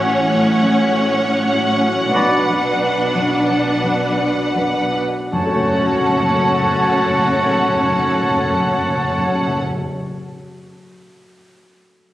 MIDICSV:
0, 0, Header, 1, 13, 480
1, 0, Start_track
1, 0, Key_signature, 3, "minor"
1, 0, Tempo, 879765
1, 658, Tempo, 937500
1, 1138, Time_signature, 3, 2, 24, 8
1, 1138, Tempo, 993377
1, 1618, Tempo, 1048951
1, 2098, Tempo, 1162791
1, 5379, End_track
2, 0, Start_track
2, 0, Title_t, "Flute"
2, 0, Program_c, 0, 73
2, 1143, Note_on_c, 0, 83, 48
2, 1361, Note_off_c, 0, 83, 0
2, 2568, Note_on_c, 0, 81, 48
2, 4327, Note_off_c, 0, 81, 0
2, 5379, End_track
3, 0, Start_track
3, 0, Title_t, "Violin section"
3, 0, Program_c, 1, 48
3, 0, Note_on_c, 1, 78, 68
3, 2436, Note_off_c, 1, 78, 0
3, 2567, Note_on_c, 1, 78, 49
3, 4326, Note_off_c, 1, 78, 0
3, 5379, End_track
4, 0, Start_track
4, 0, Title_t, "Oboe"
4, 0, Program_c, 2, 68
4, 1142, Note_on_c, 2, 74, 47
4, 1321, Note_off_c, 2, 74, 0
4, 2575, Note_on_c, 2, 73, 50
4, 4330, Note_off_c, 2, 73, 0
4, 5379, End_track
5, 0, Start_track
5, 0, Title_t, "Violin section"
5, 0, Program_c, 3, 48
5, 0, Note_on_c, 3, 73, 62
5, 1139, Note_on_c, 3, 71, 42
5, 1141, Note_off_c, 3, 73, 0
5, 2435, Note_off_c, 3, 71, 0
5, 2568, Note_on_c, 3, 69, 44
5, 4327, Note_off_c, 3, 69, 0
5, 5379, End_track
6, 0, Start_track
6, 0, Title_t, "Clarinet"
6, 0, Program_c, 4, 71
6, 1136, Note_on_c, 4, 66, 51
6, 1319, Note_off_c, 4, 66, 0
6, 2565, Note_on_c, 4, 66, 49
6, 4325, Note_off_c, 4, 66, 0
6, 5379, End_track
7, 0, Start_track
7, 0, Title_t, "French horn section"
7, 0, Program_c, 5, 60
7, 0, Note_on_c, 5, 54, 68
7, 0, Note_on_c, 5, 61, 79
7, 1116, Note_off_c, 5, 61, 0
7, 1136, Note_on_c, 5, 62, 52
7, 2364, Note_off_c, 5, 54, 0
7, 2364, Note_off_c, 5, 62, 0
7, 2566, Note_on_c, 5, 61, 48
7, 2567, Note_on_c, 5, 57, 49
7, 4325, Note_off_c, 5, 61, 0
7, 4326, Note_off_c, 5, 57, 0
7, 5379, End_track
8, 0, Start_track
8, 0, Title_t, "Harp"
8, 0, Program_c, 6, 46
8, 0, Note_on_c, 6, 45, 67
8, 0, Note_on_c, 6, 57, 47
8, 0, Note_on_c, 6, 61, 57
8, 173, Note_on_c, 6, 54, 47
8, 405, Note_off_c, 6, 61, 0
8, 412, Note_on_c, 6, 61, 48
8, 660, Note_on_c, 6, 66, 44
8, 888, Note_off_c, 6, 61, 0
8, 894, Note_on_c, 6, 61, 37
8, 1139, Note_on_c, 6, 47, 47
8, 1156, Note_off_c, 6, 45, 0
8, 1156, Note_off_c, 6, 57, 0
8, 1156, Note_off_c, 6, 61, 0
8, 1376, Note_on_c, 6, 59, 35
8, 1611, Note_off_c, 6, 54, 0
8, 1617, Note_on_c, 6, 54, 33
8, 1853, Note_on_c, 6, 62, 35
8, 2090, Note_off_c, 6, 66, 0
8, 2095, Note_on_c, 6, 66, 35
8, 2323, Note_off_c, 6, 62, 0
8, 2328, Note_on_c, 6, 62, 35
8, 2568, Note_on_c, 6, 42, 40
8, 2587, Note_off_c, 6, 62, 0
8, 2588, Note_off_c, 6, 47, 0
8, 2588, Note_off_c, 6, 59, 0
8, 2592, Note_off_c, 6, 54, 0
8, 2597, Note_on_c, 6, 54, 40
8, 2626, Note_on_c, 6, 57, 41
8, 2655, Note_on_c, 6, 61, 40
8, 2678, Note_off_c, 6, 66, 0
8, 2683, Note_on_c, 6, 66, 41
8, 2712, Note_on_c, 6, 73, 40
8, 4455, Note_off_c, 6, 42, 0
8, 4483, Note_off_c, 6, 54, 0
8, 4512, Note_off_c, 6, 57, 0
8, 4541, Note_off_c, 6, 61, 0
8, 4570, Note_off_c, 6, 66, 0
8, 4599, Note_off_c, 6, 73, 0
8, 5379, End_track
9, 0, Start_track
9, 0, Title_t, "Viola section"
9, 0, Program_c, 7, 48
9, 0, Note_on_c, 7, 61, 78
9, 1115, Note_off_c, 7, 61, 0
9, 1141, Note_on_c, 7, 62, 54
9, 2452, Note_off_c, 7, 62, 0
9, 2567, Note_on_c, 7, 61, 49
9, 4326, Note_off_c, 7, 61, 0
9, 5379, End_track
10, 0, Start_track
10, 0, Title_t, "Grand piano"
10, 0, Program_c, 8, 0
10, 0, Control_c, 8, 64, 127
10, 0, Note_on_c, 8, 33, 66
10, 0, Note_on_c, 8, 45, 47
10, 22, Note_on_c, 8, 61, 49
10, 112, Note_off_c, 8, 45, 0
10, 181, Note_on_c, 8, 45, 47
10, 270, Note_off_c, 8, 61, 0
10, 338, Note_on_c, 8, 54, 44
10, 432, Note_off_c, 8, 45, 0
10, 500, Note_on_c, 8, 45, 42
10, 595, Note_off_c, 8, 54, 0
10, 666, Note_on_c, 8, 61, 45
10, 754, Note_off_c, 8, 45, 0
10, 825, Note_on_c, 8, 45, 39
10, 914, Note_off_c, 8, 61, 0
10, 983, Note_on_c, 8, 66, 39
10, 1077, Note_off_c, 8, 45, 0
10, 1117, Note_off_c, 8, 33, 0
10, 1142, Note_off_c, 8, 66, 0
10, 1146, Note_on_c, 8, 35, 44
10, 1148, Control_c, 8, 64, 0
10, 1258, Control_c, 8, 64, 127
10, 1307, Note_on_c, 8, 42, 35
10, 1464, Note_on_c, 8, 62, 35
10, 1558, Note_off_c, 8, 42, 0
10, 1623, Note_on_c, 8, 42, 35
10, 1715, Note_off_c, 8, 62, 0
10, 1777, Note_on_c, 8, 54, 34
10, 1872, Note_off_c, 8, 42, 0
10, 1936, Note_on_c, 8, 42, 33
10, 2033, Note_off_c, 8, 54, 0
10, 2097, Note_on_c, 8, 62, 36
10, 2189, Note_off_c, 8, 42, 0
10, 2248, Note_on_c, 8, 42, 30
10, 2344, Note_off_c, 8, 62, 0
10, 2403, Note_on_c, 8, 66, 32
10, 2503, Note_off_c, 8, 42, 0
10, 2555, Note_off_c, 8, 35, 0
10, 2565, Note_off_c, 8, 66, 0
10, 2567, Note_on_c, 8, 42, 41
10, 2577, Control_c, 8, 64, 0
10, 2594, Note_on_c, 8, 54, 39
10, 2623, Note_on_c, 8, 57, 42
10, 2652, Note_on_c, 8, 61, 40
10, 2681, Note_on_c, 8, 66, 40
10, 2688, Control_c, 8, 64, 127
10, 2710, Note_on_c, 8, 73, 39
10, 4453, Note_off_c, 8, 42, 0
10, 4480, Note_off_c, 8, 54, 0
10, 4509, Note_off_c, 8, 57, 0
10, 4539, Note_off_c, 8, 61, 0
10, 4567, Note_off_c, 8, 66, 0
10, 4596, Note_off_c, 8, 73, 0
10, 5379, End_track
11, 0, Start_track
11, 0, Title_t, "Cello section"
11, 0, Program_c, 10, 48
11, 0, Note_on_c, 10, 45, 79
11, 1117, Note_off_c, 10, 45, 0
11, 1141, Note_on_c, 10, 47, 52
11, 2436, Note_off_c, 10, 47, 0
11, 2568, Note_on_c, 10, 42, 53
11, 4327, Note_off_c, 10, 42, 0
11, 5379, End_track
12, 0, Start_track
12, 0, Title_t, "Timpani"
12, 0, Program_c, 11, 47
12, 2568, Note_on_c, 11, 42, 55
12, 2599, Note_off_c, 11, 42, 0
12, 2600, Note_on_c, 11, 42, 56
12, 2629, Note_off_c, 11, 42, 0
12, 2629, Note_on_c, 11, 42, 53
12, 2659, Note_off_c, 11, 42, 0
12, 2660, Note_on_c, 11, 42, 55
12, 2689, Note_off_c, 11, 42, 0
12, 2689, Note_on_c, 11, 42, 59
12, 2719, Note_off_c, 11, 42, 0
12, 2720, Note_on_c, 11, 42, 52
12, 2751, Note_off_c, 11, 42, 0
12, 2754, Note_on_c, 11, 42, 59
12, 2784, Note_off_c, 11, 42, 0
12, 2784, Note_on_c, 11, 42, 52
12, 2814, Note_off_c, 11, 42, 0
12, 2816, Note_on_c, 11, 42, 56
12, 2845, Note_off_c, 11, 42, 0
12, 2845, Note_on_c, 11, 42, 51
12, 2875, Note_off_c, 11, 42, 0
12, 2875, Note_on_c, 11, 42, 59
12, 2904, Note_off_c, 11, 42, 0
12, 2904, Note_on_c, 11, 42, 53
12, 2934, Note_off_c, 11, 42, 0
12, 2934, Note_on_c, 11, 42, 58
12, 2963, Note_off_c, 11, 42, 0
12, 2963, Note_on_c, 11, 42, 51
12, 2993, Note_off_c, 11, 42, 0
12, 2993, Note_on_c, 11, 42, 54
12, 3023, Note_off_c, 11, 42, 0
12, 3023, Note_on_c, 11, 42, 54
12, 3053, Note_off_c, 11, 42, 0
12, 3056, Note_on_c, 11, 42, 53
12, 3086, Note_off_c, 11, 42, 0
12, 3086, Note_on_c, 11, 42, 52
12, 3115, Note_off_c, 11, 42, 0
12, 3115, Note_on_c, 11, 42, 64
12, 3143, Note_off_c, 11, 42, 0
12, 3143, Note_on_c, 11, 42, 50
12, 3173, Note_off_c, 11, 42, 0
12, 3176, Note_on_c, 11, 42, 54
12, 3206, Note_off_c, 11, 42, 0
12, 3206, Note_on_c, 11, 42, 50
12, 3237, Note_off_c, 11, 42, 0
12, 3237, Note_on_c, 11, 42, 54
12, 3265, Note_off_c, 11, 42, 0
12, 3265, Note_on_c, 11, 42, 48
12, 3295, Note_off_c, 11, 42, 0
12, 3297, Note_on_c, 11, 42, 56
12, 3327, Note_off_c, 11, 42, 0
12, 3327, Note_on_c, 11, 42, 50
12, 3357, Note_off_c, 11, 42, 0
12, 3357, Note_on_c, 11, 42, 56
12, 3385, Note_off_c, 11, 42, 0
12, 3385, Note_on_c, 11, 42, 52
12, 3416, Note_off_c, 11, 42, 0
12, 3417, Note_on_c, 11, 42, 52
12, 3447, Note_off_c, 11, 42, 0
12, 3447, Note_on_c, 11, 42, 53
12, 3477, Note_off_c, 11, 42, 0
12, 3477, Note_on_c, 11, 42, 59
12, 3507, Note_off_c, 11, 42, 0
12, 3507, Note_on_c, 11, 42, 54
12, 3537, Note_off_c, 11, 42, 0
12, 3537, Note_on_c, 11, 42, 54
12, 3567, Note_off_c, 11, 42, 0
12, 3569, Note_on_c, 11, 42, 52
12, 3599, Note_off_c, 11, 42, 0
12, 3599, Note_on_c, 11, 42, 57
12, 3630, Note_off_c, 11, 42, 0
12, 3633, Note_on_c, 11, 42, 58
12, 3663, Note_off_c, 11, 42, 0
12, 3665, Note_on_c, 11, 42, 59
12, 3695, Note_off_c, 11, 42, 0
12, 3698, Note_on_c, 11, 42, 50
12, 3729, Note_off_c, 11, 42, 0
12, 3729, Note_on_c, 11, 42, 54
12, 3759, Note_off_c, 11, 42, 0
12, 3759, Note_on_c, 11, 42, 52
12, 3789, Note_off_c, 11, 42, 0
12, 3789, Note_on_c, 11, 42, 56
12, 3819, Note_off_c, 11, 42, 0
12, 3821, Note_on_c, 11, 42, 54
12, 3851, Note_off_c, 11, 42, 0
12, 3852, Note_on_c, 11, 42, 57
12, 3879, Note_off_c, 11, 42, 0
12, 3879, Note_on_c, 11, 42, 53
12, 3909, Note_off_c, 11, 42, 0
12, 3913, Note_on_c, 11, 42, 57
12, 3944, Note_off_c, 11, 42, 0
12, 3944, Note_on_c, 11, 42, 48
12, 3973, Note_off_c, 11, 42, 0
12, 3973, Note_on_c, 11, 42, 56
12, 4003, Note_off_c, 11, 42, 0
12, 4005, Note_on_c, 11, 42, 47
12, 4035, Note_off_c, 11, 42, 0
12, 4035, Note_on_c, 11, 42, 54
12, 4065, Note_off_c, 11, 42, 0
12, 4065, Note_on_c, 11, 42, 51
12, 4095, Note_off_c, 11, 42, 0
12, 4098, Note_on_c, 11, 42, 60
12, 4126, Note_off_c, 11, 42, 0
12, 4126, Note_on_c, 11, 42, 53
12, 4156, Note_off_c, 11, 42, 0
12, 4158, Note_on_c, 11, 42, 55
12, 4188, Note_off_c, 11, 42, 0
12, 4189, Note_on_c, 11, 42, 51
12, 4218, Note_off_c, 11, 42, 0
12, 4218, Note_on_c, 11, 42, 54
12, 4248, Note_off_c, 11, 42, 0
12, 4248, Note_on_c, 11, 42, 49
12, 4278, Note_off_c, 11, 42, 0
12, 4278, Note_on_c, 11, 42, 56
12, 4308, Note_off_c, 11, 42, 0
12, 4308, Note_on_c, 11, 42, 53
12, 4337, Note_off_c, 11, 42, 0
12, 4337, Note_on_c, 11, 42, 53
12, 4368, Note_off_c, 11, 42, 0
12, 4370, Note_on_c, 11, 42, 52
12, 4400, Note_off_c, 11, 42, 0
12, 4400, Note_on_c, 11, 42, 59
12, 4428, Note_off_c, 11, 42, 0
12, 4428, Note_on_c, 11, 42, 50
12, 4458, Note_off_c, 11, 42, 0
12, 5379, End_track
13, 0, Start_track
13, 0, Title_t, "Double bass section"
13, 0, Program_c, 12, 48
13, 0, Note_on_c, 12, 33, 82
13, 1116, Note_off_c, 12, 33, 0
13, 1139, Note_on_c, 12, 35, 52
13, 2435, Note_off_c, 12, 35, 0
13, 2570, Note_on_c, 12, 30, 52
13, 4328, Note_off_c, 12, 30, 0
13, 5379, End_track
0, 0, End_of_file